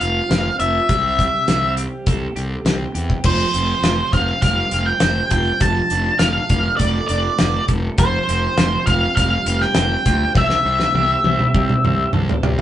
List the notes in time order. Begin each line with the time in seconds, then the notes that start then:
Already playing: G3 C4 C5
0.00 F1 F4 F5, closed hi-hat
0.29 F1 C4, snare, closed hi-hat
0.59 F1 F4 E5, closed hi-hat
0.89 C2 C3, kick, closed hi-hat
1.19 G3, kick, closed hi-hat
1.48 C2 C4, snare, closed hi-hat
1.77 G4, closed hi-hat
2.06 C2 A4, kick, closed hi-hat
2.36 C2 G4, closed hi-hat
2.65 C2 C4, snare, closed hi-hat
2.94 E2 G4, closed hi-hat
3.10 kick
3.24 F1 F3 C5, kick, crash
3.54 F1 C4, closed hi-hat
3.82 F1 F4, snare, closed hi-hat
4.13 F1 C4 F5, kick, closed hi-hat
4.42 F1 G3 F5, kick, closed hi-hat
4.71 F1 C4, closed hi-hat
4.86 G5
5.00 F1 C5, snare, closed hi-hat
5.31 F1 F4 G5, kick, closed hi-hat
5.60 F1 F3 A5, kick, closed hi-hat
5.90 F1 D4, closed hi-hat
6.19 F1 A4 F5, snare, closed hi-hat
6.49 F1 D4, kick, closed hi-hat
6.77 F1 A3 D5, kick, closed hi-hat
7.08 F1 D4 D5, closed hi-hat
7.38 F1 C5, snare, closed hi-hat
7.68 F1 A4, kick, closed hi-hat
7.98 F1 F3 C5, kick, closed hi-hat
8.28 F1 C4, closed hi-hat
8.57 F1 F4, snare, closed hi-hat
8.86 F1 C4 F5, kick, closed hi-hat
9.16 F1 G3 F5, kick, closed hi-hat
9.46 F1 C4, closed hi-hat
9.61 G5, snare
9.74 F1 C5, snare, closed hi-hat
10.06 D2 F4, kick, closed hi-hat
10.35 C2 C3 E5, kick, snare
10.50 snare
10.65 C2 C4
10.80 snare
10.94 C2 G4, high tom
11.24 C2 C4, high tom
11.39 mid tom
11.54 C2 G3, kick
11.69 mid tom
11.84 C2 C4, mid tom
12.13 C2 A4, mid tom
12.29 floor tom
12.43 C2 G4, floor tom